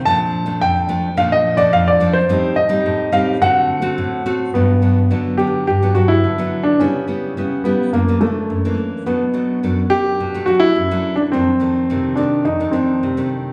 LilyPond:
<<
  \new Staff \with { instrumentName = "Grand piano" } { \time 4/4 \key d \phrygian \tempo 4 = 106 a''4 g''4 f''16 ees''8 d''16 f''16 d''8 c''16~ | c''8 ees''4 f''8 fis''4. r8 | \key g \major b4. g'8 g'8 fis'16 e'4 d'16 | cis'4. b8 ais8 a4 r8 |
b4. g'4 fis'16 e'4 d'16 | c'4. d'8 ees'8 c'4 r8 | }
  \new Staff \with { instrumentName = "Nylon-string guitar" } { \time 4/4 \key d \phrygian << { <f a d'>8. <f a d'>8. <f a d'>16 r16 <f a d'>8. <f a d'>8. <f a d'>16 r16 | <g c' ees'>8 r16 <g c' ees'>8. <g c' ees'>8 <a c' fis'>8. <a c' fis'>8. <a c' fis'>8 | \key g \major <fis b d'>16 r16 <fis b d'>16 r16 <fis b d'>8 <fis b d'>8 r16 <fis b d'>16 <fis b d'>8. <fis b d'>8. | <g b e'>8 <g b e'>8 <g b e'>8 <g b e'>8 <e ais d'>16 <e ais d'>16 <e d'>8. <e ais d'>8. |
<fis a d'>16 r16 <fis a d'>8 <fis a d'>16 r16 <a d'>8. <fis a d'>16 <fis a d'>8 r16 <fis a d'>8. | <ees a d'>16 r16 <ees a d'>8 <ees a d'>8 <ees a d'>8. <ees a d'>16 <ees a d'>8. <ees a d'>8. | } \\ { bes,4 f,4 bes,4 f,4 | a,4 a,4 d4 a,4 | g,4 d4 g,4 d4 | cis4 cis4 fis,4 fis,4 |
b,4 fis,4 b,4 fis,4 | f,4 c4 f,4 c4 | } >> }
>>